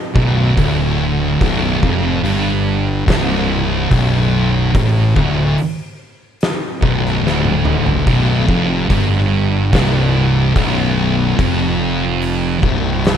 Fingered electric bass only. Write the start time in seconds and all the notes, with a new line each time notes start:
0.16 B0
0.58 D1
1.41 B0
1.83 F1
2.25 G1
3.08 C1
3.91 B0
4.75 A1
5.17 D1
6.83 B0
7.24 D1
8.07 B0
8.49 F1
8.90 G1
9.73 C1
10.56 B0
11.39 F1
12.63 C1